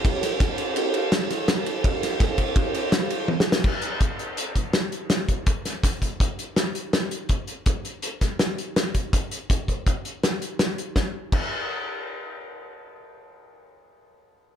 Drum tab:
CC |------------------------------|------------------------------|x-----------------------------|------------------------------|
RD |x--x--x--x--x--x--x--x--x--x--|x--x--x--x--x--x--x--x--------|------------------------------|------------------------------|
HH |------------------------------|------------------------------|---x--x--x--x--x--x--x--x--x--|x--x--x--x--x--x--x--x--x--x--|
SD |---o--o-----------o--o--o-----|---o--o-----------o-------o-o-|------------------o-----o-----|---o--o-----------o-----o-----|
T1 |------------------------------|------------------------o-----|------------------------------|------------------------------|
BD |o-----o-----------------------|o-----o--o--o-----------------|o-----o--------o-----------o--|o-----o--o--o-----------------|

CC |------------------------------|------------------------------|------x-----------------------|------------------------------|
RD |------------------------------|------------------------------|------------------------------|------------------------------|
HH |x--x--x--x--x--x--x--x--x--x--|x--x--x--x--x--x--x--x--x--x--|------------------------------|------------------------------|
SD |---------------o--o-----o-----|------------------o-----o-----|o-----------------------------|------------------------------|
T1 |------------------------------|------------------------------|------------------------------|------------------------------|
BD |o-----o--------o-----------o--|o-----o--o--o-----------------|o-----o-----------------------|------------------------------|